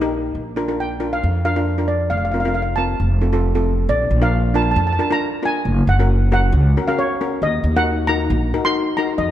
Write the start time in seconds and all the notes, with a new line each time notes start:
Already playing: A#1
0.01 D#4 G4 A#4
0.35 A#1
0.56 D4 F4 A#4
0.68 D4 F4 A#4
0.80 G5
1.00 D4 F4 A#4
1.13 F5
1.23 F2
1.45 D4 F4 A#4 F5
1.56 D4 F4 A#4
1.78 D4 F4 A#4
1.88 D5
2.10 F1 F5
2.17 F5
2.25 F5
2.32 C4 F4 A#4 F5
2.40 F5
2.45 C4 F4 A#4 F5
2.54 F5
2.62 F5
2.76 C4 F4 A#4 A5
3.00 F1
3.21 C4 F4 A4
3.33 C4 F4 A4
3.55 C4 F4 A4
3.89 A#1 D5
4.11 A#1
4.22 D4 F4 A#4 F5
4.54 D4 F4 A#4 A5
4.62 A5
4.71 A5
4.76 F2 A5
4.87 A5
4.93 A5
4.99 D4 F4 A#4 A5
5.11 D4 F4 A#4 A#5
5.43 D4 F4 A#4 G#5
5.65 F#1
5.87 F#1 F#5
5.99 C#4 F#4 A#4
6.32 C#4 F#4 A#4 F#5
6.52 C#2
6.77 C#4 F#4 A#4
6.88 C#4 F#4 A#4 F5
6.99 C#5
7.21 C#4 F#4 A#4
7.42 D#2 D#5
7.64 D#2
7.76 D#4 F#4 A#4 F#5
8.07 D#4 F#4 A#4 A#5
8.30 A#1
8.54 D#4 F#4 A#4
8.65 D#4 F#4 A#4 C6
8.97 D#4 F#4 A#4 A#5
9.18 F2 D#5